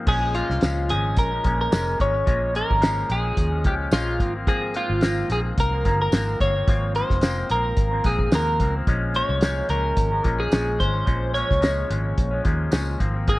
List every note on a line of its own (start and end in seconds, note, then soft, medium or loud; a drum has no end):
0.07 0.41 A#1 loud
0.07 0.33 A#2 medium
0.07 0.34 F3 medium
0.07 0.35 G#3 medium
0.07 0.36 C#4 medium
0.07 0.36 G#4 medium
0.07 kick loud
0.07 crash medium
0.34 0.61 A#2 medium
0.34 0.62 F3 medium
0.34 0.63 G#3 medium
0.34 0.64 C#4 medium
0.34 0.92 F4 medium
0.34 closed hi-hat medium
0.50 0.60 C2 medium
0.50 snare soft
0.61 0.92 C#2 medium
0.61 0.88 A#2 medium
0.61 0.90 F3 medium
0.61 0.90 G#3 medium
0.61 0.91 C#4 loud
0.61 snare loud
0.61 closed hi-hat medium
0.61 tambourine medium
0.89 1.17 G#1 medium
0.89 1.32 A#2 medium
0.89 1.33 F3 medium
0.89 1.33 G#3 medium
0.89 1.31 C#4 medium
0.89 1.18 G#4 medium
0.89 closed hi-hat medium
1.16 1.39 A#1 medium
1.16 1.60 A#4 loud
1.16 kick loud
1.16 closed hi-hat loud
1.32 1.43 F3 soft
1.32 1.44 G#3 soft
1.32 1.45 C#4 soft
1.43 1.67 A#1 medium
1.43 1.70 A#2 medium
1.43 1.71 F3 medium
1.43 1.71 G#3 medium
1.43 1.72 C#4 medium
1.43 kick medium
1.43 closed hi-hat medium
1.61 1.98 A#4 medium
1.71 1.94 F1 medium
1.71 1.97 A#2 medium
1.71 1.98 F3 medium
1.71 1.99 G#3 medium
1.71 2.00 C#4 medium
1.71 snare loud
1.71 closed hi-hat medium
1.71 tambourine medium
1.99 2.22 G#1 medium
1.99 2.14 A#2 medium
1.99 2.15 F3 medium
1.99 2.13 G#3 medium
1.99 2.12 C#4 medium
1.99 2.56 C#5 loud
1.99 kick medium
1.99 closed hi-hat medium
2.13 2.26 F3 soft
2.13 2.26 G#3 medium
2.13 2.26 C#4 medium
2.26 2.61 A#1 medium
2.26 2.52 A#2 medium
2.26 2.53 F3 medium
2.26 2.54 G#3 medium
2.26 2.55 C#4 medium
2.26 kick loud
2.26 closed hi-hat medium
2.53 2.80 A#2 medium
2.53 2.80 F3 medium
2.53 2.81 G#3 medium
2.53 2.82 C#4 medium
2.53 3.12 A#4 loud
2.53 closed hi-hat medium
2.70 3.02 G#1 loud
2.70 kick medium
2.81 3.08 A#2 medium
2.81 3.09 F3 medium
2.81 3.10 G#3 medium
2.81 3.10 C#4 loud
2.81 snare loud
2.81 closed hi-hat medium
2.81 tambourine medium
3.09 3.32 A#1 medium
3.09 3.52 A#2 medium
3.09 3.53 F3 medium
3.09 3.53 G#3 medium
3.09 3.51 C#4 medium
3.09 3.67 G#4 loud
3.09 closed hi-hat medium
3.37 3.65 D#2 loud
3.37 kick loud
3.37 closed hi-hat loud
3.52 3.65 F3 soft
3.52 3.65 G#3 soft
3.52 3.65 C#4 medium
3.64 3.87 C#2 medium
3.64 3.91 A#2 medium
3.64 3.92 F3 medium
3.64 3.93 G#3 medium
3.64 3.93 C#4 medium
3.64 3.74 G4 medium
3.64 kick loud
3.64 closed hi-hat medium
3.92 4.20 A#1 medium
3.92 4.20 A#2 medium
3.92 4.20 F3 medium
3.92 4.21 G#3 medium
3.92 4.21 C#4 medium
3.92 4.32 F4 medium
3.92 snare loud
3.92 closed hi-hat medium
3.92 tambourine medium
4.20 4.76 G#1 loud
4.20 4.35 G#2 medium
4.20 4.36 F3 medium
4.20 4.36 A#3 medium
4.20 4.34 C4 medium
4.20 kick medium
4.20 closed hi-hat medium
4.36 4.46 F3 soft
4.36 4.47 A#3 medium
4.36 4.48 C4 medium
4.47 4.74 G#2 medium
4.47 4.75 F3 medium
4.47 4.75 A#3 medium
4.47 4.76 C4 loud
4.47 4.76 G#4 medium
4.47 kick loud
4.47 closed hi-hat medium
4.74 5.00 G#2 medium
4.74 5.01 F3 medium
4.74 5.02 A#3 medium
4.74 5.02 C4 medium
4.74 5.31 F4 medium
4.74 closed hi-hat medium
4.90 5.22 G#1 medium
5.01 5.28 G#2 medium
5.01 5.29 F3 medium
5.01 5.30 A#3 medium
5.01 5.31 C4 loud
5.01 snare loud
5.01 closed hi-hat medium
5.01 tambourine medium
5.29 5.52 A#1 medium
5.29 5.72 G#2 medium
5.29 5.73 F3 medium
5.29 5.73 A#3 medium
5.29 5.71 C4 medium
5.29 5.39 G#4 medium
5.29 closed hi-hat medium
5.57 5.87 C2 loud
5.57 6.00 A#4 loud
5.57 kick medium
5.57 closed hi-hat medium
5.72 5.84 F3 soft
5.72 5.85 A#3 soft
5.72 5.85 C4 medium
5.84 6.07 G1 medium
5.84 6.11 G#2 medium
5.84 6.12 F3 medium
5.84 6.12 A#3 medium
5.84 6.13 C4 medium
5.84 kick medium
5.84 closed hi-hat medium
6.02 6.41 A#4 loud
6.12 6.34 G#1 medium
6.12 6.38 G#2 medium
6.12 6.39 F3 medium
6.12 6.40 A#3 medium
6.12 6.41 C4 medium
6.12 snare loud
6.12 closed hi-hat medium
6.12 tambourine medium
6.39 6.62 G1 medium
6.39 6.55 G#2 medium
6.39 6.55 F3 medium
6.39 6.55 A#3 medium
6.39 6.54 C4 medium
6.39 6.92 C#5 loud
6.39 kick medium
6.39 closed hi-hat medium
6.55 6.67 F3 soft
6.55 6.67 A#3 medium
6.55 6.67 C4 medium
6.67 7.02 G#1 loud
6.67 6.94 G#2 medium
6.67 6.95 F3 medium
6.67 6.96 A#3 medium
6.67 6.96 C4 medium
6.67 kick loud
6.67 closed hi-hat medium
6.95 7.20 G#2 medium
6.95 7.21 F3 medium
6.95 7.22 A#3 medium
6.95 7.23 C4 medium
6.95 7.51 C5 medium
6.95 closed hi-hat medium
7.10 7.42 F1 loud
7.10 kick medium
7.10 snare soft
7.21 7.48 G#2 medium
7.21 7.49 F3 medium
7.21 7.50 A#3 medium
7.21 7.51 C4 medium
7.21 snare loud
7.21 closed hi-hat medium
7.21 tambourine medium
7.49 7.72 A#1 loud
7.49 7.92 G#2 medium
7.49 7.93 F3 medium
7.49 7.92 A#3 medium
7.49 7.91 C4 medium
7.49 8.08 A#4 medium
7.49 closed hi-hat medium
7.77 8.00 G#1 loud
7.77 kick medium
7.77 closed hi-hat medium
7.92 8.04 F3 soft
7.92 8.05 A#3 soft
7.92 8.05 C4 medium
8.04 8.27 A#1 medium
8.04 8.31 G#2 medium
8.04 8.32 F3 medium
8.04 8.32 A#3 medium
8.04 8.32 C4 medium
8.04 8.34 G#4 medium
8.04 kick medium
8.04 closed hi-hat medium
8.19 kick medium
8.32 8.61 D#2 medium
8.32 8.58 G#2 medium
8.32 8.59 F3 medium
8.32 8.60 A#3 medium
8.32 8.61 C4 medium
8.32 8.74 A#4 medium
8.32 snare loud
8.32 closed hi-hat medium
8.32 tambourine medium
8.59 8.82 C#2 medium
8.59 8.75 G#2 medium
8.59 8.75 F3 medium
8.59 8.76 A#3 medium
8.59 8.74 C4 medium
8.59 kick medium
8.59 closed hi-hat medium
8.75 8.87 F3 soft
8.75 8.88 A#3 soft
8.75 8.88 C4 medium
8.87 9.22 A#1 medium
8.87 9.13 A#2 medium
8.87 9.14 F3 medium
8.87 9.15 G#3 medium
8.87 9.16 C#4 medium
8.87 kick loud
8.87 closed hi-hat medium
9.14 9.41 A#2 medium
9.14 9.42 F3 medium
9.14 9.42 G#3 medium
9.14 9.43 C#4 medium
9.14 9.70 C#5 loud
9.14 closed hi-hat medium
9.29 9.61 C2 loud
9.41 9.68 A#2 medium
9.41 9.69 F3 medium
9.41 9.69 G#3 medium
9.41 9.70 C#4 medium
9.41 snare loud
9.41 closed hi-hat medium
9.41 tambourine medium
9.69 9.92 C#2 medium
9.69 10.12 A#2 medium
9.69 10.13 F3 medium
9.69 10.12 G#3 medium
9.69 10.10 C#4 medium
9.69 10.43 A#4 loud
9.69 closed hi-hat medium
9.97 10.20 G#1 medium
9.97 kick medium
9.97 closed hi-hat loud
10.12 10.23 F3 soft
10.12 10.24 G#3 soft
10.12 10.25 C#4 soft
10.23 10.47 A#1 medium
10.23 10.50 A#2 medium
10.23 10.51 F3 medium
10.23 10.52 G#3 medium
10.23 10.53 C#4 medium
10.23 kick medium
10.23 closed hi-hat medium
10.40 10.81 G#4 medium
10.52 10.82 A#1 medium
10.52 10.77 A#2 medium
10.52 10.78 F3 medium
10.52 10.79 G#3 medium
10.52 10.80 C#4 medium
10.52 snare loud
10.52 closed hi-hat medium
10.52 tambourine medium
10.78 11.02 G#1 medium
10.78 10.94 A#2 medium
10.78 10.95 F3 medium
10.78 10.94 G#3 medium
10.78 10.93 C#4 medium
10.78 11.31 C5 loud
10.78 kick medium
10.78 closed hi-hat medium
10.94 11.05 F3 soft
10.94 11.06 G#3 medium
10.94 11.06 C#4 medium
11.06 11.42 A#1 medium
11.06 11.32 A#2 medium
11.06 11.34 F3 medium
11.06 11.34 G#3 medium
11.06 11.35 C#4 medium
11.06 kick loud
11.06 closed hi-hat medium
11.33 11.60 A#2 medium
11.33 11.61 F3 medium
11.33 11.61 G#3 medium
11.33 11.62 C#4 medium
11.33 12.41 C#5 loud
11.33 closed hi-hat medium
11.51 11.83 C#2 medium
11.51 kick medium
11.51 snare soft
11.61 11.87 A#2 medium
11.61 11.88 F3 medium
11.61 11.89 G#3 loud
11.61 11.89 C#4 medium
11.61 snare loud
11.61 closed hi-hat medium
11.61 tambourine medium
11.88 12.12 G#1 loud
11.88 12.32 A#2 medium
11.88 12.33 F3 medium
11.88 12.32 G#3 medium
11.88 12.30 C#4 medium
11.88 closed hi-hat medium
12.18 12.40 A#1 medium
12.18 kick loud
12.18 closed hi-hat medium
12.31 12.44 F3 soft
12.31 12.44 G#3 medium
12.31 12.44 C#4 medium
12.44 12.67 D#2 medium
12.44 12.70 A#2 medium
12.44 12.71 F3 medium
12.44 12.71 G#3 medium
12.44 12.72 C#4 medium
12.44 kick loud
12.44 closed hi-hat medium
12.71 12.95 C#2 loud
12.71 13.00 A#2 medium
12.71 12.99 F3 medium
12.71 13.00 G#3 medium
12.71 13.01 C#4 loud
12.71 snare loud
12.71 closed hi-hat medium
12.71 tambourine medium
12.99 13.39 G#1 medium
12.99 13.15 G#2 medium
12.99 13.15 F3 medium
12.99 13.15 A#3 medium
12.99 13.13 C4 medium
12.99 kick medium
12.99 closed hi-hat medium
13.14 13.27 F3 soft
13.14 13.27 A#3 medium
13.14 13.27 C4 medium
13.27 13.39 G#2 medium
13.27 13.39 F3 medium
13.27 13.39 A#3 medium
13.27 13.39 C4 medium
13.27 13.39 G#4 medium
13.27 kick loud
13.27 closed hi-hat medium